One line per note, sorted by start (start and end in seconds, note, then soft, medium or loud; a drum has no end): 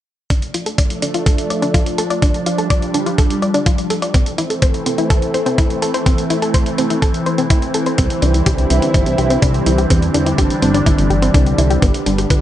0.30 4.10 F3 medium
0.30 2.20 A3 medium
0.30 0.41 D4 medium
0.30 4.10 D4 medium
0.30 kick loud
0.30 closed hi-hat medium
0.42 closed hi-hat soft
0.54 0.61 F4 medium
0.54 closed hi-hat medium
0.66 0.78 A4 medium
0.66 closed hi-hat soft
0.78 0.90 D5 medium
0.78 kick loud
0.78 closed hi-hat medium
0.90 closed hi-hat soft
1.02 1.14 D4 medium
1.02 closed hi-hat medium
1.14 1.26 F4 medium
1.14 closed hi-hat soft
1.26 1.37 A4 medium
1.26 kick loud
1.26 closed hi-hat medium
1.38 closed hi-hat soft
1.50 1.57 D5 medium
1.50 closed hi-hat soft
1.62 1.73 D4 loud
1.62 closed hi-hat soft
1.74 1.80 F4 medium
1.74 kick loud
1.74 closed hi-hat medium
1.86 closed hi-hat soft
1.98 2.10 A4 medium
1.98 closed hi-hat medium
2.10 2.22 D5 medium
2.10 closed hi-hat soft
2.22 4.12 G3 medium
2.22 2.33 D4 medium
2.22 kick loud
2.22 closed hi-hat medium
2.34 closed hi-hat soft
2.46 2.53 F4 medium
2.46 closed hi-hat medium
2.58 2.70 A4 medium
2.58 closed hi-hat soft
2.70 2.82 D5 medium
2.70 kick loud
2.70 closed hi-hat medium
2.82 closed hi-hat soft
2.94 3.06 D4 medium
2.94 closed hi-hat medium
3.06 3.18 F4 medium
3.06 closed hi-hat soft
3.18 3.29 A4 medium
3.18 kick loud
3.18 closed hi-hat medium
3.30 closed hi-hat soft
3.42 3.49 D5 medium
3.42 closed hi-hat soft
3.54 3.65 D4 loud
3.54 closed hi-hat soft
3.66 3.72 F4 medium
3.66 kick loud
3.66 closed hi-hat medium
3.78 closed hi-hat soft
3.90 4.02 A4 medium
3.90 closed hi-hat medium
4.02 4.14 D5 medium
4.02 closed hi-hat soft
4.14 11.78 E3 medium
4.14 7.95 A3 medium
4.14 4.25 C4 medium
4.14 11.78 C4 medium
4.14 kick loud
4.14 closed hi-hat medium
4.26 closed hi-hat soft
4.38 4.44 E4 medium
4.38 closed hi-hat medium
4.50 4.62 A4 medium
4.50 closed hi-hat soft
4.62 4.74 C5 medium
4.62 kick loud
4.62 closed hi-hat medium
4.74 closed hi-hat soft
4.86 4.98 C4 medium
4.86 closed hi-hat medium
4.98 5.10 E4 medium
4.98 closed hi-hat soft
5.10 5.21 A4 medium
5.10 kick loud
5.10 closed hi-hat medium
5.22 closed hi-hat soft
5.34 5.40 C5 medium
5.34 closed hi-hat soft
5.46 5.57 C4 loud
5.46 closed hi-hat soft
5.58 5.64 E4 medium
5.58 kick loud
5.58 closed hi-hat medium
5.70 closed hi-hat soft
5.82 5.94 A4 medium
5.82 closed hi-hat medium
5.94 6.06 C5 medium
5.94 closed hi-hat soft
6.06 6.17 C4 medium
6.06 kick loud
6.06 closed hi-hat medium
6.18 closed hi-hat soft
6.30 6.37 E4 medium
6.30 closed hi-hat medium
6.42 6.54 A4 medium
6.42 closed hi-hat soft
6.54 6.66 C5 medium
6.54 kick loud
6.54 closed hi-hat medium
6.66 closed hi-hat soft
6.78 6.90 C4 medium
6.78 closed hi-hat medium
6.90 7.02 E4 medium
6.90 closed hi-hat soft
7.02 7.13 A4 medium
7.02 kick loud
7.02 closed hi-hat medium
7.14 closed hi-hat soft
7.26 7.32 C5 medium
7.26 closed hi-hat soft
7.38 7.49 C4 loud
7.38 closed hi-hat soft
7.50 7.57 E4 medium
7.50 kick loud
7.50 closed hi-hat medium
7.62 closed hi-hat soft
7.74 7.86 A4 medium
7.74 closed hi-hat medium
7.86 7.98 C5 medium
7.86 closed hi-hat soft
7.98 8.08 C2 loud
7.98 12.41 D3 medium
7.98 12.41 G3 medium
7.98 8.09 C4 medium
7.98 9.88 E4 medium
7.98 kick loud
7.98 closed hi-hat medium
8.10 closed hi-hat soft
8.22 8.42 C2 medium
8.22 8.28 D4 medium
8.22 closed hi-hat medium
8.34 8.46 E4 medium
8.34 closed hi-hat soft
8.46 8.66 C2 medium
8.46 8.58 G4 medium
8.46 kick loud
8.46 closed hi-hat medium
8.58 closed hi-hat soft
8.70 8.80 C2 medium
8.70 8.82 C4 medium
8.70 closed hi-hat medium
8.82 8.94 D4 medium
8.82 closed hi-hat soft
8.94 9.04 G1 loud
8.94 9.05 E4 medium
8.94 kick loud
8.94 closed hi-hat medium
9.06 9.16 C2 medium
9.06 closed hi-hat soft
9.18 9.38 C2 medium
9.18 9.25 G4 medium
9.18 closed hi-hat soft
9.30 9.41 C4 loud
9.30 closed hi-hat soft
9.42 9.62 C2 medium
9.42 9.49 D4 medium
9.42 kick loud
9.42 closed hi-hat medium
9.54 closed hi-hat soft
9.66 9.86 C2 medium
9.66 9.78 E4 medium
9.66 closed hi-hat medium
9.78 9.90 G4 medium
9.78 closed hi-hat soft
9.90 10.10 E2 medium
9.90 10.01 C4 medium
9.90 11.80 D4 medium
9.90 kick loud
9.90 closed hi-hat medium
10.02 closed hi-hat soft
10.14 10.34 E2 medium
10.14 10.21 D4 medium
10.14 closed hi-hat medium
10.26 10.38 E4 medium
10.26 closed hi-hat soft
10.38 10.48 G1 medium
10.38 10.50 G4 medium
10.38 kick loud
10.38 closed hi-hat medium
10.50 closed hi-hat soft
10.62 10.82 G1 medium
10.62 10.74 C4 medium
10.62 closed hi-hat medium
10.74 10.86 D4 medium
10.74 closed hi-hat soft
10.86 10.96 G1 loud
10.86 10.97 E4 medium
10.86 kick loud
10.86 closed hi-hat medium
10.98 11.08 G1 medium
10.98 closed hi-hat soft
11.10 11.30 G1 medium
11.10 11.17 G4 medium
11.10 closed hi-hat soft
11.22 11.33 C4 loud
11.22 closed hi-hat soft
11.34 11.54 C2 medium
11.34 11.40 D4 medium
11.34 kick loud
11.34 closed hi-hat medium
11.46 closed hi-hat soft
11.58 11.78 C2 medium
11.58 11.70 E4 medium
11.58 closed hi-hat medium
11.70 11.82 G4 medium
11.70 closed hi-hat soft
11.82 11.92 G1 loud
11.82 12.41 B3 medium
11.82 11.93 B3 medium
11.82 kick loud
11.82 closed hi-hat medium
11.94 closed hi-hat soft
12.06 12.26 G1 medium
12.06 12.12 D4 medium
12.06 closed hi-hat medium
12.18 12.30 G4 medium
12.18 closed hi-hat soft
12.30 12.41 G1 medium
12.30 12.41 B4 medium
12.30 kick loud
12.30 closed hi-hat medium